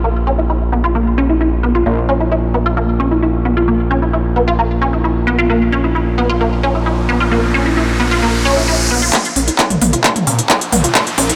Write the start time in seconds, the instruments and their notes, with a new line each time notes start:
Already playing: analog synth bass A#1
0.04 synth arpeggio sound A#3
0.27 synth arpeggio sound C#4
0.39 synth arpeggio sound E4
0.50 synth arpeggio sound E4
0.72 synth arpeggio sound B3
0.84 synth arpeggio sound F4
0.95 synth arpeggio sound A#3
1.18 synth arpeggio sound C#4
1.29 synth arpeggio sound E4
1.41 synth arpeggio sound E4
1.63 synth arpeggio sound B3
1.75 synth arpeggio sound F4
1.86 analog synth bass A#1, synth arpeggio sound A#3
2.09 synth arpeggio sound C#4
2.20 synth arpeggio sound E4
2.32 synth arpeggio sound E4
2.54 synth arpeggio sound B3
2.66 synth arpeggio sound F4
2.77 synth arpeggio sound A#3
3.00 synth arpeggio sound C#4
3.11 synth arpeggio sound E4
3.23 synth arpeggio sound E4
3.45 synth arpeggio sound B3
3.57 synth arpeggio sound F4
3.68 synth arpeggio sound A#3
3.91 synth arpeggio sound C#4
4.02 synth arpeggio sound E4
4.13 synth arpeggio sound E4
4.36 synth arpeggio sound B3
4.48 synth arpeggio sound F4
4.59 synth arpeggio sound A#3
4.82 synth arpeggio sound C#4
4.93 synth arpeggio sound E4
5.04 synth arpeggio sound E4
5.27 synth arpeggio sound B3
5.39 synth arpeggio sound F4
5.50 synth arpeggio sound A#3, riser
5.72 synth arpeggio sound C#4
5.84 synth arpeggio sound E4
5.95 synth arpeggio sound E4
6.18 synth arpeggio sound B3
6.29 synth arpeggio sound F4
6.41 synth arpeggio sound A#3
6.63 synth arpeggio sound C#4
6.75 synth arpeggio sound E4
6.86 synth arpeggio sound E4
7.09 synth arpeggio sound B3
7.20 synth arpeggio sound F4
7.32 synth arpeggio sound A#3
7.54 synth arpeggio sound C#4
7.66 synth arpeggio sound E4
7.77 synth arpeggio sound E4
8.00 synth arpeggio sound B3
8.11 synth arpeggio sound F4
8.22 synth arpeggio sound A#3
8.45 synth arpeggio sound C#4
8.57 synth arpeggio sound E4
8.68 synth arpeggio sound E4
8.91 synth arpeggio sound B3
9.02 synth arpeggio sound F4
9.13 synth arpeggio sound A#3, kick, clap, closed hi-hat, riser
9.25 closed hi-hat
9.36 analog synth bass A#1, synth arpeggio sound C#4, open hi-hat
9.48 synth arpeggio sound E4, closed hi-hat
9.59 synth arpeggio sound E4, kick, clap, closed hi-hat
9.70 analog synth bass A#1, closed hi-hat, mid tom
9.81 analog synth bass A#1, synth arpeggio sound B3, mid tom, open hi-hat
9.93 synth arpeggio sound F4, closed hi-hat
10.04 synth arpeggio sound A#3, kick, clap, closed hi-hat
10.16 closed hi-hat, mid tom
10.27 analog synth bass A#2, synth arpeggio sound C#4, open hi-hat
10.39 synth arpeggio sound E4, closed hi-hat
10.50 synth arpeggio sound E4, kick, clap, closed hi-hat
10.61 closed hi-hat
10.72 analog synth bass A#1, synth arpeggio sound B3, mid tom, open hi-hat
10.84 synth arpeggio sound F4, closed hi-hat
10.95 synth arpeggio sound A#3, kick, clap, closed hi-hat
11.07 closed hi-hat
11.18 analog synth bass A#1, synth arpeggio sound C#4, kick, open hi-hat
11.29 synth arpeggio sound E4, closed hi-hat